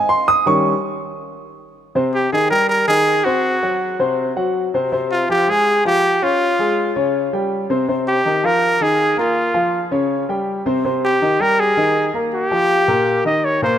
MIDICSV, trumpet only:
0, 0, Header, 1, 2, 480
1, 0, Start_track
1, 0, Key_signature, -4, "major"
1, 0, Tempo, 370370
1, 617, Time_signature, 4, 2, 24, 8
1, 17864, End_track
2, 0, Start_track
2, 0, Title_t, "Trumpet"
2, 0, Program_c, 0, 56
2, 2780, Note_on_c, 0, 67, 83
2, 3003, Note_off_c, 0, 67, 0
2, 3013, Note_on_c, 0, 68, 95
2, 3236, Note_off_c, 0, 68, 0
2, 3244, Note_on_c, 0, 70, 107
2, 3474, Note_off_c, 0, 70, 0
2, 3489, Note_on_c, 0, 70, 101
2, 3717, Note_off_c, 0, 70, 0
2, 3728, Note_on_c, 0, 68, 101
2, 4203, Note_on_c, 0, 66, 91
2, 4223, Note_off_c, 0, 68, 0
2, 5173, Note_off_c, 0, 66, 0
2, 6630, Note_on_c, 0, 65, 90
2, 6850, Note_off_c, 0, 65, 0
2, 6874, Note_on_c, 0, 67, 103
2, 7125, Note_on_c, 0, 68, 112
2, 7144, Note_off_c, 0, 67, 0
2, 7594, Note_off_c, 0, 68, 0
2, 7601, Note_on_c, 0, 67, 101
2, 8076, Note_on_c, 0, 65, 96
2, 8095, Note_off_c, 0, 67, 0
2, 9029, Note_off_c, 0, 65, 0
2, 10474, Note_on_c, 0, 67, 104
2, 10957, Note_on_c, 0, 70, 114
2, 10977, Note_off_c, 0, 67, 0
2, 11439, Note_on_c, 0, 68, 100
2, 11458, Note_off_c, 0, 70, 0
2, 11906, Note_off_c, 0, 68, 0
2, 11914, Note_on_c, 0, 65, 89
2, 12815, Note_off_c, 0, 65, 0
2, 14316, Note_on_c, 0, 67, 96
2, 14789, Note_on_c, 0, 70, 109
2, 14808, Note_off_c, 0, 67, 0
2, 15031, Note_on_c, 0, 68, 96
2, 15051, Note_off_c, 0, 70, 0
2, 15745, Note_off_c, 0, 68, 0
2, 15996, Note_on_c, 0, 67, 99
2, 17135, Note_off_c, 0, 67, 0
2, 17188, Note_on_c, 0, 75, 84
2, 17427, Note_on_c, 0, 73, 87
2, 17447, Note_off_c, 0, 75, 0
2, 17663, Note_off_c, 0, 73, 0
2, 17670, Note_on_c, 0, 72, 83
2, 17864, Note_off_c, 0, 72, 0
2, 17864, End_track
0, 0, End_of_file